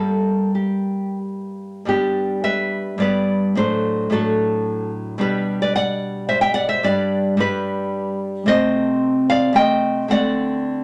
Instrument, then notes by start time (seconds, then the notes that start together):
nylon-string guitar
Already playing: G2 G3 A#3 A4
0.55 G4
1.85 G2 G3 B3 D4 G4
2.44 B4 E5
2.98 G2 G3 B3 D5
3.02 B4
3.55 A2 F#3 D4 A4 C5
4.10 A2 F#3 D4 F#4 A4
5.18 B2 G3 D4 G4 B4
5.62 B4 D5
5.76 D5 F#5
6.29 C5 E5
6.41 E5 G5
6.54 D5 F#5
6.69 C5 E5
6.83 G2 G3 D4 B4 D5
7.37 G2 G3 D4 G4 B4
8.46 C3 A3 C4 C5 D#5
9.30 D5 F5
9.53 C3 A3 C4 G5
9.57 D#5
10.08 D3 A3 C4 D5 F#5